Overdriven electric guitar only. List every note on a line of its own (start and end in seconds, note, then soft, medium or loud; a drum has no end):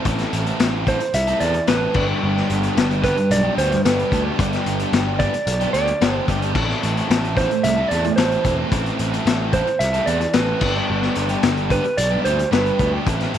0.04 0.73 A2 medium
0.04 0.73 E3 medium
0.04 0.47 C4 medium
0.04 0.45 E4 loud
0.04 0.44 A4 loud
0.45 0.86 C4 medium
0.45 0.87 E4 medium
0.45 0.88 A4 medium
0.86 1.00 E3 medium
0.86 0.99 C4 medium
0.86 0.99 E4 medium
0.86 0.99 A4 medium
1.00 muted overdriven electric guitar stroke medium
1.27 1.40 C4 medium
1.27 1.41 E4 medium
1.27 1.42 A4 medium
1.40 1.53 E3 medium
1.40 1.53 C4 medium
1.40 1.53 E4 medium
1.40 1.53 A4 medium
1.54 muted overdriven electric guitar stroke medium
1.68 1.93 A2 medium
1.68 1.94 E3 medium
1.68 1.94 C4 medium
1.68 1.95 E4 medium
1.68 1.95 A4 loud
1.94 2.21 G2 medium
1.94 2.21 D3 medium
1.94 2.10 G3 medium
1.94 2.09 B3 loud
1.94 2.08 D4 loud
1.94 2.07 G4 loud
2.07 2.22 G3 medium
2.07 2.22 B3 medium
2.07 2.23 D4 medium
2.07 2.23 G4 medium
2.21 3.85 G2 medium
2.21 2.90 D3 medium
2.21 2.64 G3 loud
2.21 2.63 B3 medium
2.21 2.63 D4 loud
2.21 2.61 G4 loud
2.62 3.02 G3 medium
2.62 3.03 B3 medium
2.62 3.04 D4 medium
2.62 3.04 G4 medium
3.02 3.17 G3 medium
3.02 3.16 B3 medium
3.02 3.16 D4 medium
3.02 3.16 G4 medium
3.17 muted overdriven electric guitar stroke medium
3.43 3.56 G3 medium
3.43 3.57 B3 medium
3.43 3.58 D4 medium
3.43 3.58 G4 medium
3.57 3.71 G3 medium
3.57 3.71 B3 medium
3.57 3.71 D4 medium
3.57 3.71 G4 medium
3.72 muted overdriven electric guitar stroke medium
3.85 4.38 G2 medium
3.85 4.38 D3 medium
3.85 4.12 G3 medium
3.85 4.12 B3 loud
3.85 4.13 D4 medium
3.85 4.14 G4 loud
4.13 4.28 G3 medium
4.13 4.27 B3 medium
4.13 4.26 D4 medium
4.13 4.25 G4 medium
4.26 4.39 G3 medium
4.26 4.39 B3 medium
4.26 4.39 D4 medium
4.26 4.40 G4 medium
4.39 5.07 G2 medium
4.39 5.07 D3 medium
4.39 4.80 G3 medium
4.39 4.80 B3 medium
4.39 4.79 D4 medium
4.39 4.78 G4 loud
4.79 5.18 G3 medium
4.79 5.19 B3 medium
4.79 5.20 D4 medium
4.79 5.21 G4 medium
5.20 5.33 G3 medium
5.20 5.33 B3 medium
5.20 5.33 D4 medium
5.20 5.32 G4 medium
5.34 muted overdriven electric guitar stroke medium
5.60 5.73 G3 medium
5.60 5.74 B3 medium
5.60 5.75 D4 medium
5.60 5.75 G4 medium
5.74 5.88 G3 medium
5.74 5.88 B3 medium
5.74 5.87 D4 medium
5.74 5.87 G4 medium
5.88 muted overdriven electric guitar stroke soft
6.01 6.54 G2 medium
6.01 6.54 D3 medium
6.01 6.27 G3 medium
6.01 6.28 B3 medium
6.01 6.28 D4 medium
6.01 6.29 G4 medium
6.28 6.43 G3 medium
6.28 6.43 B3 medium
6.28 6.42 D4 medium
6.28 6.41 G4 medium
6.42 6.55 G3 medium
6.42 6.55 B3 medium
6.42 6.54 D4 medium
6.42 6.54 G4 medium
6.55 8.17 A2 medium
6.55 7.36 E3 medium
6.55 6.98 C4 medium
6.55 6.97 E4 medium
6.55 6.95 A4 medium
6.96 7.36 C4 medium
6.96 7.36 E4 medium
6.96 7.37 A4 medium
7.36 7.50 E3 medium
7.36 7.50 C4 medium
7.36 7.49 E4 medium
7.36 7.49 A4 medium
7.50 muted overdriven electric guitar stroke medium
7.77 7.90 C4 medium
7.77 7.91 E4 medium
7.77 7.92 A4 medium
7.90 8.05 E3 medium
7.90 8.04 C4 medium
7.90 8.04 E4 loud
7.90 8.04 A4 medium
8.05 muted overdriven electric guitar stroke soft
8.18 8.72 A2 loud
8.18 8.43 E3 loud
8.18 8.44 C4 medium
8.18 8.45 E4 loud
8.18 8.46 A4 loud
8.44 8.72 E3 medium
8.44 8.60 C4 medium
8.44 8.59 E4 medium
8.44 8.57 A4 medium
8.59 8.73 C4 medium
8.59 8.73 E4 medium
8.59 8.74 A4 medium
8.73 9.40 A2 medium
8.73 9.41 E3 medium
8.73 9.15 C4 loud
8.73 9.14 E4 loud
8.73 9.12 A4 loud
9.13 9.53 C4 medium
9.13 9.54 E4 medium
9.13 9.55 A4 medium
9.53 9.67 E3 medium
9.53 9.66 C4 medium
9.53 9.66 E4 medium
9.53 9.66 A4 medium
9.68 muted overdriven electric guitar stroke medium
9.93 10.07 C4 medium
9.93 10.08 E4 medium
9.93 10.08 A4 medium
10.07 10.20 E3 medium
10.07 10.21 C4 medium
10.07 10.20 E4 loud
10.07 10.20 A4 medium
10.21 muted overdriven electric guitar stroke soft
10.34 10.60 A2 medium
10.34 10.61 E3 medium
10.34 10.61 C4 loud
10.34 10.61 E4 medium
10.34 10.62 A4 medium
10.62 10.88 G2 medium
10.62 10.88 D3 medium
10.62 10.76 G3 loud
10.62 10.76 B3 loud
10.62 10.75 D4 loud
10.62 10.74 G4 loud
10.75 10.88 G3 medium
10.75 10.89 B3 medium
10.75 10.89 D4 medium
10.75 10.90 G4 medium
10.89 11.57 G2 medium
10.89 11.57 D3 medium
10.89 11.30 G3 medium
10.89 11.30 B3 loud
10.89 11.29 D4 medium
10.89 11.29 G4 medium
11.30 11.69 G3 medium
11.30 11.70 B3 medium
11.30 11.71 D4 medium
11.30 11.71 G4 medium
11.70 11.84 G3 medium
11.70 11.84 B3 medium
11.70 11.84 D4 medium
11.70 11.84 G4 medium
11.85 muted overdriven electric guitar stroke medium
12.11 12.23 G3 medium
12.11 12.24 B3 medium
12.11 12.25 D4 medium
12.11 12.26 G4 medium
12.24 12.39 G3 medium
12.24 12.38 B3 medium
12.24 12.38 D4 medium
12.24 12.38 G4 loud
12.39 muted overdriven electric guitar stroke medium
12.51 13.05 G2 medium
12.51 13.05 D3 medium
12.51 12.78 G3 medium
12.51 12.79 B3 medium
12.51 12.79 D4 medium
12.51 12.80 G4 medium
12.79 12.93 G3 medium
12.79 12.93 B3 medium
12.79 12.93 D4 medium
12.79 12.91 G4 medium
12.92 13.06 G3 medium
12.92 13.06 B3 medium
12.92 13.06 D4 medium
12.92 13.05 G4 medium
13.06 13.38 A2 medium
13.06 13.38 E3 medium
13.06 13.38 C4 medium
13.06 13.38 E4 medium
13.06 13.38 A4 medium